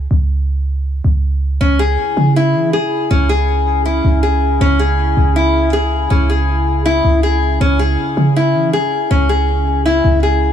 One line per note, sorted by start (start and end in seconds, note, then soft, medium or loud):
0.11 1.01 C#2 loud
1.04 1.58 C#2 loud
1.61 1.97 C#2 loud
1.61 10.53 C#3 medium
1.61 7.57 C#4 medium
1.61 1.78 C#4 loud
1.61 4.58 E4 medium
1.61 4.58 G#4 loud
1.79 2.32 G#4 medium
2.17 2.56 C#3 loud
2.36 2.71 E4 medium
2.54 2.72 E3 loud
2.73 3.08 G#4 medium
3.11 4.01 C#2 loud
3.11 3.28 C#4 loud
3.29 3.82 G#4 medium
3.85 4.21 E4 medium
4.04 4.58 C#2 loud
4.23 4.58 G#4 medium
4.60 5.15 C#2 loud
4.60 4.78 C#4 loud
4.60 10.53 E4 medium
4.60 10.53 G#4 loud
4.79 5.32 G#4 medium
5.17 6.07 C#2 loud
5.36 5.71 E4 medium
5.73 6.08 G#4 medium
6.10 7.01 C#2 loud
6.10 6.28 C#4 medium
6.30 6.82 G#4 medium
6.86 7.21 E4 medium
7.04 7.58 C#2 loud
7.23 7.58 G#4 medium
7.60 7.97 C#2 loud
7.60 10.53 C#4 medium
7.60 7.78 C#4 loud
7.79 8.32 G#4 medium
8.17 8.56 C#3 loud
8.36 8.71 E4 medium
8.55 8.72 E3 loud
8.73 9.09 G#4 medium
9.11 10.01 C#2 loud
9.11 9.28 C#4 loud
9.29 9.82 G#4 medium
9.86 10.21 E4 medium
10.04 10.53 C#2 loud
10.23 10.53 G#4 medium